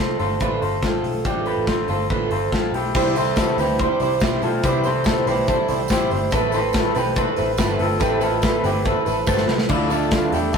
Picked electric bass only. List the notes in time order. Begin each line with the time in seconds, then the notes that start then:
Already playing: C2
0.20 G1
0.41 A1
0.62 G1
0.83 A1
1.03 B1
1.25 A1
1.57 A1
1.89 G1
2.10 A1
2.30 G1
2.53 A1
2.72 B1
2.95 C2
3.57 D2
4.00 C2
4.22 B1
4.42 B1
4.64 C2
5.26 B1
5.69 C2
5.90 A1
6.11 G1
6.32 A1
6.96 B1
7.39 A1
7.58 G1
7.80 G1
8.01 A1
8.64 G1
9.06 A1
9.28 G1
9.49 C2
9.70 D2
10.32 E2